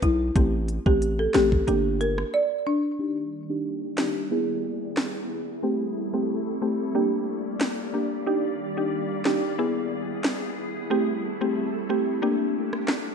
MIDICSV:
0, 0, Header, 1, 6, 480
1, 0, Start_track
1, 0, Tempo, 659341
1, 259, Time_signature, 4, 2, 24, 8
1, 9572, End_track
2, 0, Start_track
2, 0, Title_t, "Marimba"
2, 0, Program_c, 0, 12
2, 20, Note_on_c, 0, 64, 80
2, 121, Note_off_c, 0, 64, 0
2, 627, Note_on_c, 0, 67, 77
2, 717, Note_off_c, 0, 67, 0
2, 868, Note_on_c, 0, 69, 75
2, 957, Note_off_c, 0, 69, 0
2, 980, Note_on_c, 0, 67, 85
2, 1081, Note_off_c, 0, 67, 0
2, 1462, Note_on_c, 0, 70, 76
2, 1562, Note_off_c, 0, 70, 0
2, 1702, Note_on_c, 0, 74, 86
2, 1802, Note_off_c, 0, 74, 0
2, 1941, Note_on_c, 0, 62, 81
2, 2042, Note_off_c, 0, 62, 0
2, 9572, End_track
3, 0, Start_track
3, 0, Title_t, "Synth pluck"
3, 0, Program_c, 1, 84
3, 0, Note_on_c, 1, 59, 94
3, 0, Note_on_c, 1, 64, 89
3, 0, Note_on_c, 1, 68, 103
3, 186, Note_off_c, 1, 59, 0
3, 187, Note_off_c, 1, 64, 0
3, 188, Note_off_c, 1, 68, 0
3, 258, Note_on_c, 1, 57, 96
3, 261, Note_on_c, 1, 60, 89
3, 264, Note_on_c, 1, 67, 102
3, 403, Note_off_c, 1, 57, 0
3, 404, Note_off_c, 1, 60, 0
3, 406, Note_off_c, 1, 67, 0
3, 625, Note_on_c, 1, 57, 79
3, 628, Note_on_c, 1, 60, 73
3, 630, Note_on_c, 1, 67, 90
3, 952, Note_off_c, 1, 57, 0
3, 953, Note_off_c, 1, 60, 0
3, 954, Note_off_c, 1, 67, 0
3, 980, Note_on_c, 1, 57, 81
3, 981, Note_on_c, 1, 60, 72
3, 983, Note_on_c, 1, 67, 90
3, 1201, Note_off_c, 1, 57, 0
3, 1202, Note_off_c, 1, 60, 0
3, 1203, Note_off_c, 1, 67, 0
3, 1217, Note_on_c, 1, 58, 91
3, 1220, Note_on_c, 1, 62, 85
3, 1222, Note_on_c, 1, 67, 104
3, 1698, Note_off_c, 1, 58, 0
3, 1700, Note_off_c, 1, 62, 0
3, 1701, Note_off_c, 1, 67, 0
3, 2178, Note_on_c, 1, 62, 91
3, 2180, Note_on_c, 1, 63, 82
3, 2183, Note_on_c, 1, 67, 104
3, 2323, Note_off_c, 1, 62, 0
3, 2324, Note_off_c, 1, 63, 0
3, 2325, Note_off_c, 1, 67, 0
3, 2545, Note_on_c, 1, 62, 77
3, 2548, Note_on_c, 1, 63, 71
3, 2550, Note_on_c, 1, 67, 88
3, 2871, Note_off_c, 1, 62, 0
3, 2873, Note_off_c, 1, 63, 0
3, 2874, Note_off_c, 1, 67, 0
3, 2898, Note_on_c, 1, 62, 77
3, 2900, Note_on_c, 1, 63, 71
3, 2902, Note_on_c, 1, 67, 84
3, 3121, Note_off_c, 1, 62, 0
3, 3122, Note_off_c, 1, 63, 0
3, 3123, Note_off_c, 1, 67, 0
3, 3137, Note_on_c, 1, 59, 92
3, 3140, Note_on_c, 1, 64, 85
3, 3142, Note_on_c, 1, 68, 97
3, 4026, Note_off_c, 1, 59, 0
3, 4028, Note_off_c, 1, 64, 0
3, 4029, Note_off_c, 1, 68, 0
3, 4097, Note_on_c, 1, 57, 91
3, 4100, Note_on_c, 1, 60, 84
3, 4102, Note_on_c, 1, 67, 99
3, 4242, Note_off_c, 1, 57, 0
3, 4244, Note_off_c, 1, 60, 0
3, 4244, Note_off_c, 1, 67, 0
3, 4465, Note_on_c, 1, 57, 79
3, 4467, Note_on_c, 1, 60, 72
3, 4470, Note_on_c, 1, 67, 86
3, 4792, Note_off_c, 1, 57, 0
3, 4793, Note_off_c, 1, 60, 0
3, 4794, Note_off_c, 1, 67, 0
3, 4817, Note_on_c, 1, 57, 78
3, 4818, Note_on_c, 1, 60, 74
3, 4820, Note_on_c, 1, 67, 87
3, 5040, Note_off_c, 1, 57, 0
3, 5041, Note_off_c, 1, 60, 0
3, 5042, Note_off_c, 1, 67, 0
3, 5057, Note_on_c, 1, 58, 92
3, 5059, Note_on_c, 1, 62, 80
3, 5062, Note_on_c, 1, 67, 102
3, 5724, Note_off_c, 1, 58, 0
3, 5725, Note_off_c, 1, 62, 0
3, 5727, Note_off_c, 1, 67, 0
3, 5777, Note_on_c, 1, 58, 69
3, 5780, Note_on_c, 1, 62, 68
3, 5783, Note_on_c, 1, 67, 79
3, 5922, Note_off_c, 1, 58, 0
3, 5924, Note_off_c, 1, 62, 0
3, 5925, Note_off_c, 1, 67, 0
3, 6017, Note_on_c, 1, 62, 92
3, 6019, Note_on_c, 1, 63, 82
3, 6021, Note_on_c, 1, 67, 99
3, 6162, Note_off_c, 1, 62, 0
3, 6163, Note_off_c, 1, 63, 0
3, 6164, Note_off_c, 1, 67, 0
3, 6385, Note_on_c, 1, 62, 76
3, 6387, Note_on_c, 1, 63, 68
3, 6389, Note_on_c, 1, 67, 89
3, 6711, Note_off_c, 1, 62, 0
3, 6712, Note_off_c, 1, 63, 0
3, 6714, Note_off_c, 1, 67, 0
3, 6739, Note_on_c, 1, 62, 79
3, 6741, Note_on_c, 1, 63, 72
3, 6743, Note_on_c, 1, 67, 90
3, 6961, Note_off_c, 1, 62, 0
3, 6962, Note_off_c, 1, 63, 0
3, 6963, Note_off_c, 1, 67, 0
3, 6978, Note_on_c, 1, 59, 89
3, 6980, Note_on_c, 1, 64, 82
3, 6982, Note_on_c, 1, 68, 104
3, 7867, Note_off_c, 1, 59, 0
3, 7867, Note_off_c, 1, 64, 0
3, 7868, Note_off_c, 1, 68, 0
3, 7938, Note_on_c, 1, 57, 92
3, 7940, Note_on_c, 1, 60, 82
3, 7942, Note_on_c, 1, 67, 104
3, 8082, Note_off_c, 1, 57, 0
3, 8084, Note_off_c, 1, 60, 0
3, 8085, Note_off_c, 1, 67, 0
3, 8306, Note_on_c, 1, 57, 79
3, 8308, Note_on_c, 1, 60, 74
3, 8310, Note_on_c, 1, 67, 89
3, 8632, Note_off_c, 1, 57, 0
3, 8633, Note_off_c, 1, 60, 0
3, 8634, Note_off_c, 1, 67, 0
3, 8659, Note_on_c, 1, 57, 79
3, 8661, Note_on_c, 1, 60, 75
3, 8663, Note_on_c, 1, 67, 91
3, 8881, Note_off_c, 1, 57, 0
3, 8882, Note_off_c, 1, 60, 0
3, 8883, Note_off_c, 1, 67, 0
3, 8897, Note_on_c, 1, 58, 92
3, 8900, Note_on_c, 1, 62, 87
3, 8902, Note_on_c, 1, 67, 106
3, 9564, Note_off_c, 1, 58, 0
3, 9565, Note_off_c, 1, 62, 0
3, 9566, Note_off_c, 1, 67, 0
3, 9572, End_track
4, 0, Start_track
4, 0, Title_t, "Ambient pad"
4, 0, Program_c, 2, 92
4, 2179, Note_on_c, 2, 55, 72
4, 2179, Note_on_c, 2, 58, 72
4, 2180, Note_on_c, 2, 51, 77
4, 2180, Note_on_c, 2, 67, 89
4, 2180, Note_on_c, 2, 74, 70
4, 3130, Note_off_c, 2, 51, 0
4, 3130, Note_off_c, 2, 55, 0
4, 3130, Note_off_c, 2, 58, 0
4, 3130, Note_off_c, 2, 67, 0
4, 3130, Note_off_c, 2, 74, 0
4, 3141, Note_on_c, 2, 64, 73
4, 3142, Note_on_c, 2, 59, 74
4, 3142, Note_on_c, 2, 68, 89
4, 4091, Note_off_c, 2, 59, 0
4, 4091, Note_off_c, 2, 68, 0
4, 4099, Note_on_c, 2, 55, 74
4, 4099, Note_on_c, 2, 60, 70
4, 4099, Note_on_c, 2, 69, 82
4, 4100, Note_on_c, 2, 57, 71
4, 5041, Note_off_c, 2, 64, 0
4, 5050, Note_off_c, 2, 55, 0
4, 5050, Note_off_c, 2, 57, 0
4, 5050, Note_off_c, 2, 60, 0
4, 5050, Note_off_c, 2, 69, 0
4, 5059, Note_on_c, 2, 67, 91
4, 5059, Note_on_c, 2, 74, 74
4, 5060, Note_on_c, 2, 58, 77
4, 6010, Note_off_c, 2, 58, 0
4, 6020, Note_on_c, 2, 55, 71
4, 6020, Note_on_c, 2, 58, 70
4, 6021, Note_on_c, 2, 51, 75
4, 6960, Note_off_c, 2, 67, 0
4, 6960, Note_off_c, 2, 74, 0
4, 6970, Note_off_c, 2, 51, 0
4, 6970, Note_off_c, 2, 55, 0
4, 6970, Note_off_c, 2, 58, 0
4, 6978, Note_on_c, 2, 59, 81
4, 6978, Note_on_c, 2, 68, 88
4, 6979, Note_on_c, 2, 64, 78
4, 7929, Note_off_c, 2, 59, 0
4, 7929, Note_off_c, 2, 68, 0
4, 7939, Note_on_c, 2, 55, 76
4, 7939, Note_on_c, 2, 57, 70
4, 7939, Note_on_c, 2, 60, 67
4, 7939, Note_on_c, 2, 69, 86
4, 8880, Note_off_c, 2, 64, 0
4, 8889, Note_off_c, 2, 57, 0
4, 8889, Note_off_c, 2, 60, 0
4, 8890, Note_off_c, 2, 55, 0
4, 8890, Note_off_c, 2, 69, 0
4, 8899, Note_on_c, 2, 58, 77
4, 8900, Note_on_c, 2, 62, 73
4, 8900, Note_on_c, 2, 67, 87
4, 9572, Note_off_c, 2, 58, 0
4, 9572, Note_off_c, 2, 62, 0
4, 9572, Note_off_c, 2, 67, 0
4, 9572, End_track
5, 0, Start_track
5, 0, Title_t, "808-style bass"
5, 0, Program_c, 3, 38
5, 18, Note_on_c, 3, 35, 98
5, 226, Note_off_c, 3, 35, 0
5, 260, Note_on_c, 3, 33, 115
5, 577, Note_off_c, 3, 33, 0
5, 627, Note_on_c, 3, 33, 103
5, 932, Note_off_c, 3, 33, 0
5, 981, Note_on_c, 3, 33, 92
5, 1187, Note_off_c, 3, 33, 0
5, 1221, Note_on_c, 3, 31, 107
5, 1635, Note_off_c, 3, 31, 0
5, 9572, End_track
6, 0, Start_track
6, 0, Title_t, "Drums"
6, 17, Note_on_c, 9, 42, 59
6, 19, Note_on_c, 9, 36, 93
6, 90, Note_off_c, 9, 42, 0
6, 91, Note_off_c, 9, 36, 0
6, 259, Note_on_c, 9, 36, 104
6, 259, Note_on_c, 9, 42, 73
6, 332, Note_off_c, 9, 36, 0
6, 332, Note_off_c, 9, 42, 0
6, 498, Note_on_c, 9, 42, 58
6, 571, Note_off_c, 9, 42, 0
6, 627, Note_on_c, 9, 36, 88
6, 699, Note_off_c, 9, 36, 0
6, 742, Note_on_c, 9, 42, 76
6, 815, Note_off_c, 9, 42, 0
6, 974, Note_on_c, 9, 39, 88
6, 978, Note_on_c, 9, 38, 114
6, 981, Note_on_c, 9, 42, 54
6, 1047, Note_off_c, 9, 39, 0
6, 1051, Note_off_c, 9, 38, 0
6, 1054, Note_off_c, 9, 42, 0
6, 1107, Note_on_c, 9, 36, 90
6, 1180, Note_off_c, 9, 36, 0
6, 1220, Note_on_c, 9, 42, 62
6, 1293, Note_off_c, 9, 42, 0
6, 1462, Note_on_c, 9, 42, 51
6, 1534, Note_off_c, 9, 42, 0
6, 1587, Note_on_c, 9, 37, 99
6, 1660, Note_off_c, 9, 37, 0
6, 2894, Note_on_c, 9, 39, 88
6, 2898, Note_on_c, 9, 38, 105
6, 2967, Note_off_c, 9, 39, 0
6, 2971, Note_off_c, 9, 38, 0
6, 3615, Note_on_c, 9, 39, 88
6, 3619, Note_on_c, 9, 38, 114
6, 3688, Note_off_c, 9, 39, 0
6, 3692, Note_off_c, 9, 38, 0
6, 5535, Note_on_c, 9, 39, 92
6, 5539, Note_on_c, 9, 38, 114
6, 5607, Note_off_c, 9, 39, 0
6, 5611, Note_off_c, 9, 38, 0
6, 6732, Note_on_c, 9, 39, 85
6, 6736, Note_on_c, 9, 38, 104
6, 6805, Note_off_c, 9, 39, 0
6, 6809, Note_off_c, 9, 38, 0
6, 7454, Note_on_c, 9, 39, 88
6, 7458, Note_on_c, 9, 38, 110
6, 7526, Note_off_c, 9, 39, 0
6, 7531, Note_off_c, 9, 38, 0
6, 9267, Note_on_c, 9, 37, 96
6, 9340, Note_off_c, 9, 37, 0
6, 9375, Note_on_c, 9, 39, 91
6, 9379, Note_on_c, 9, 38, 113
6, 9448, Note_off_c, 9, 39, 0
6, 9452, Note_off_c, 9, 38, 0
6, 9572, End_track
0, 0, End_of_file